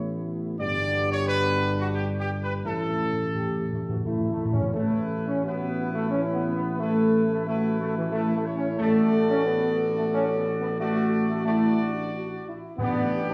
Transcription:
0.00 0.60 A1 medium
0.00 0.54 C#3 medium
0.00 0.55 A3 medium
0.00 0.55 B3 medium
0.00 0.55 E4 medium
0.00 0.22 C#5 medium
0.58 2.63 G1 medium
0.58 2.47 B2 medium
0.58 2.47 B3 medium
0.58 2.64 D4 medium
0.58 2.60 G4 medium
0.58 1.06 D5 loud
1.11 1.26 C#5 medium
1.26 1.74 B4 loud
1.78 1.86 F#4 medium
1.93 2.04 G4 medium
2.18 2.28 G4 medium
2.42 2.52 B4 medium
2.63 4.38 A1 medium
2.63 2.71 A2 soft
2.63 3.66 C#3 medium
2.63 3.66 A3 medium
2.63 3.23 C#4 medium
2.63 3.23 E4 medium
2.63 4.01 A4 medium
2.72 2.79 A2 soft
2.81 2.87 A2 soft
2.88 2.95 A2 soft
2.96 3.03 A2 soft
3.04 3.11 A2 soft
3.12 3.18 A2 soft
3.20 3.25 A2 soft
3.34 3.40 A2 soft
3.34 3.83 G4 medium
3.42 3.48 A2 soft
3.49 3.57 A2 medium
3.58 3.64 A2 medium
3.65 3.71 A2 medium
3.72 3.80 A2 medium
3.72 3.79 A3 medium
3.81 3.88 A2 medium
3.87 3.95 A2 medium
3.87 3.97 E3 medium
3.87 4.05 F#4 medium
3.96 4.04 A2 medium
4.04 4.11 A2 medium
4.04 4.27 A3 medium
4.04 4.55 E4 medium
4.12 4.20 A2 medium
4.21 4.28 A2 medium
4.29 4.36 A2 medium
4.29 4.52 A3 medium
4.37 4.44 A2 medium
4.45 4.52 A2 medium
4.53 4.60 A2 medium
4.53 4.75 C#4 medium
4.61 4.68 A2 medium
4.61 4.76 B3 medium
4.74 8.77 A1 medium
4.74 5.22 A3 medium
4.74 5.40 E4 medium
4.74 5.40 B4 medium
5.27 5.43 C#4 medium
5.44 5.95 B3 medium
5.44 6.76 E4 medium
5.44 6.07 F#4 medium
5.44 6.76 B4 medium
5.94 6.10 A3 medium
6.10 6.21 C#4 medium
6.10 6.79 E4 medium
6.33 6.54 B3 medium
6.55 6.77 B3 medium
6.78 7.26 A3 medium
6.78 7.44 E4 medium
6.78 7.42 A4 medium
6.78 7.43 B4 medium
7.31 7.45 A3 medium
7.46 7.78 A3 medium
7.46 8.10 E4 medium
7.46 8.11 F#4 medium
7.46 8.10 B4 medium
7.80 7.96 A3 medium
7.98 8.13 E3 medium
8.11 8.33 A3 medium
8.11 8.76 E4 medium
8.11 8.81 E4 medium
8.11 8.44 B4 medium
8.36 8.46 A3 medium
8.45 8.80 C#5 medium
8.56 8.66 C#4 medium
8.77 12.48 A1 medium
8.77 9.26 A3 loud
8.77 10.78 F#4 medium
8.77 10.76 A4 medium
8.77 10.77 D5 medium
9.30 9.46 C#4 medium
9.46 9.97 B3 medium
9.98 10.05 A3 medium
10.13 10.23 C#4 loud
10.36 10.46 B3 medium
10.60 10.69 B3 medium
10.79 11.26 A3 medium
10.79 11.42 F#4 medium
10.79 11.43 F#4 medium
10.79 11.42 D5 medium
11.29 11.43 A3 medium
11.45 11.76 A3 medium
11.45 11.78 E4 medium
11.45 12.63 F#4 medium
11.45 12.63 D5 medium
11.82 12.12 D4 medium
12.15 12.47 F#4 medium
12.47 12.77 E4 medium
12.78 13.34 A1 medium
12.78 13.34 A2 medium
12.78 13.25 B3 loud
12.78 13.28 D4 medium
12.78 13.34 G4 medium
12.78 13.34 D5 medium
13.29 13.34 D4 medium

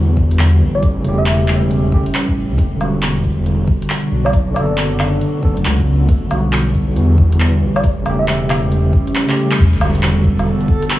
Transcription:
0.00 0.63 E2 loud
0.00 0.84 B2 medium
0.00 0.80 D3 medium
0.00 4.34 E3 medium
0.00 0.82 G3 medium
0.00 4.34 G3 medium
0.00 0.83 D4 medium
0.00 0.83 F#4 medium
0.00 0.84 F#4 medium
0.17 kick loud
0.31 closed hi-hat medium
0.39 clap loud
0.39 closed hi-hat medium
0.61 1.04 A1 medium
0.75 0.89 D5 medium
0.83 2.58 A2 medium
0.83 kick loud
0.83 closed hi-hat medium
1.00 1.69 E1 loud
1.00 1.88 C#3 medium
1.00 1.90 A3 medium
1.04 2.59 C#4 medium
1.04 1.92 G4 medium
1.04 closed hi-hat medium
1.18 1.62 E5 medium
1.26 clap loud
1.26 closed hi-hat medium
1.48 clap medium
1.48 closed hi-hat soft
1.64 2.58 G4 medium
1.70 1.91 E1 medium
1.70 closed hi-hat medium
1.90 2.02 C#3 medium
1.90 2.04 A3 medium
1.90 kick loud
1.94 2.05 G4 medium
2.06 closed hi-hat medium
2.15 clap loud
2.15 closed hi-hat medium
2.28 kick medium
2.36 2.52 A1 medium
2.50 2.57 C#2 loud
2.58 3.67 E1 medium
2.58 7.84 B2 medium
2.58 kick loud
2.58 closed hi-hat medium
2.76 4.30 D3 medium
2.80 4.32 G3 medium
2.80 4.34 F#4 medium
2.80 closed hi-hat medium
2.80 low woodblock soft
3.02 clap loud
3.02 closed hi-hat soft
3.24 kick medium
3.24 closed hi-hat soft
3.39 7.84 D4 medium
3.39 7.84 F#4 medium
3.46 closed hi-hat medium
3.67 kick loud
3.82 closed hi-hat medium
3.90 clap loud
3.90 closed hi-hat soft
4.11 4.54 B1 loud
4.25 4.39 D5 medium
4.25 low woodblock medium
4.33 kick loud
4.33 closed hi-hat medium
4.51 5.39 D3 medium
4.51 5.41 B3 medium
4.51 5.17 D5 medium
4.55 5.20 F#1 loud
4.55 6.09 F#3 medium
4.55 5.43 A4 medium
4.55 closed hi-hat medium
4.55 low woodblock soft
4.78 clap loud
4.78 closed hi-hat soft
5.00 clap medium
5.00 closed hi-hat soft
5.00 low woodblock medium
5.10 6.09 A3 medium
5.21 closed hi-hat medium
5.41 5.64 F#1 medium
5.41 5.53 D3 medium
5.41 5.54 B3 medium
5.41 5.55 A4 medium
5.41 kick loud
5.57 closed hi-hat medium
5.65 6.08 C#2 loud
5.65 clap loud
5.65 closed hi-hat medium
5.79 kick medium
6.09 kick loud
6.09 closed hi-hat medium
6.26 7.81 D3 medium
6.30 6.95 B1 loud
6.30 7.83 G3 medium
6.30 closed hi-hat medium
6.30 low woodblock medium
6.34 7.85 F#4 medium
6.50 10.99 E3 medium
6.50 clap medium
6.50 closed hi-hat medium
6.57 10.99 G3 medium
6.74 kick medium
6.74 closed hi-hat soft
6.96 7.64 E2 loud
6.96 closed hi-hat medium
7.18 kick medium
7.33 closed hi-hat medium
7.40 clap medium
7.40 closed hi-hat medium
7.62 8.05 A1 medium
7.76 7.89 D5 medium
7.76 low woodblock medium
7.84 9.59 A2 medium
7.84 kick loud
7.84 closed hi-hat medium
8.02 8.89 C#3 medium
8.06 8.70 E1 loud
8.06 8.91 A3 medium
8.06 8.93 G4 loud
8.06 closed hi-hat medium
8.06 low woodblock medium
8.19 8.63 E5 medium
8.28 9.59 G4 medium
8.28 clap loud
8.28 closed hi-hat medium
8.50 9.59 C#4 medium
8.50 clap medium
8.50 closed hi-hat soft
8.50 low woodblock medium
8.71 8.92 E1 medium
8.71 closed hi-hat medium
8.93 kick loud
9.07 closed hi-hat medium
9.15 clap loud
9.15 closed hi-hat medium
9.26 9.57 C#3 medium
9.26 9.58 A3 medium
9.26 clap medium
9.31 9.59 G4 medium
9.37 closed hi-hat soft
9.51 clap medium
9.58 10.68 E1 loud
9.58 10.99 B2 medium
9.58 10.99 A4 medium
9.58 kick loud
9.58 sub drop medium
9.73 10.99 D3 medium
9.73 closed hi-hat soft
9.80 10.99 G3 medium
9.80 low woodblock medium
9.84 10.99 F#4 medium
9.95 closed hi-hat medium
10.03 clap loud
10.24 kick medium
10.39 10.99 D4 medium
10.39 closed hi-hat medium
10.39 low woodblock soft
10.61 closed hi-hat soft
10.68 kick loud
10.83 closed hi-hat medium
10.90 clap loud

